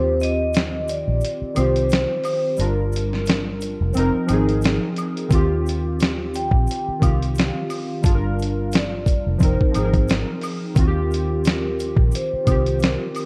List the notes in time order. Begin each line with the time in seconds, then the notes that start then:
Already playing: D#2 D#3 C4 F4 G4 C5
0.20 D#5, closed hi-hat, maracas
0.53 snare, closed hi-hat, maracas
0.88 D5, closed hi-hat, maracas
1.08 A#1
1.21 closed hi-hat, maracas
1.42 muted fingered electric bass stroke
1.54 C2 D#3 C4 C5, closed hi-hat, high woodblock, maracas
1.59 F4 G4
1.76 closed hi-hat
1.90 snare, closed hi-hat, maracas
2.24 C5, open hi-hat, high woodblock, maracas
2.57 G1 G3 D4 A#4, closed hi-hat, maracas
2.61 F4 A#4
2.92 closed hi-hat, maracas
3.13 snare
3.26 snare, closed hi-hat, maracas
3.61 closed hi-hat, maracas
3.81 F1
3.93 F1 F3 C4, maracas
3.97 D#4 A#4, closed hi-hat
4.26 G#1 F3 C4, closed hi-hat, high woodblock, maracas
4.31 D#4 G#4
4.49 closed hi-hat
4.62 snare, closed hi-hat, maracas
4.96 closed hi-hat, high woodblock, maracas
5.17 closed hi-hat
5.28 D#2 D#3 C4, kick, closed hi-hat, maracas
5.33 F4 G4
5.66 closed hi-hat, maracas
6.00 snare, closed hi-hat, maracas
6.34 G5, closed hi-hat, maracas
6.51 A#1, kick
6.67 maracas
6.71 closed hi-hat
6.88 muted fingered electric bass stroke
6.99 C2 D#3 C4 F4 F5, kick, closed hi-hat, high woodblock, maracas
7.06 G4
7.22 closed hi-hat
7.35 closed hi-hat, maracas
7.40 snare
7.70 open hi-hat, high woodblock, maracas
8.02 G1 G3 D4 F4 F5, kick, closed hi-hat, maracas
8.08 G#4
8.15 A#4
8.39 closed hi-hat, maracas
8.72 D5, snare, closed hi-hat, maracas
9.06 kick, closed hi-hat, maracas
9.27 F1
9.38 F1 F3 C4, kick, maracas
9.42 D#4 A#4 C5, closed hi-hat
9.61 muted fingered electric bass stroke, kick
9.71 F3 C4, closed hi-hat, high woodblock, maracas
9.76 G#1 D#4 G#4
9.84 A#4
9.94 kick, closed hi-hat
10.08 snare, closed hi-hat, maracas
10.41 open hi-hat, high woodblock, maracas
10.74 D#2 D#3 C4, kick, closed hi-hat, maracas
10.79 F4 F#4
10.87 G4
11.11 closed hi-hat, maracas
11.44 A#4, snare, closed hi-hat, maracas
11.79 closed hi-hat, maracas
11.96 A#1, kick
12.12 C5, closed hi-hat, maracas
12.33 muted fingered electric bass stroke
12.45 C2 D#3 C4, kick, closed hi-hat, high woodblock, maracas
12.49 F4 G4
12.66 closed hi-hat
12.80 closed hi-hat, maracas
12.84 A#4, snare
13.15 open hi-hat, high woodblock, maracas